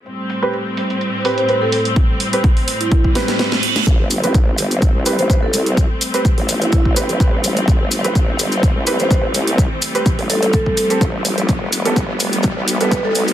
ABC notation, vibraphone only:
X:1
M:4/4
L:1/16
Q:"Swing 16ths" 1/4=126
K:Am
V:1 name="Vibraphone"
z8 z3 c2 A z2 | z6 z E E z6 z | z8 z3 c2 A z2 | z6 z E E z6 z |
z8 z3 c2 z3 | z6 A A A4 z4 | z8 z3 B2 A z2 |]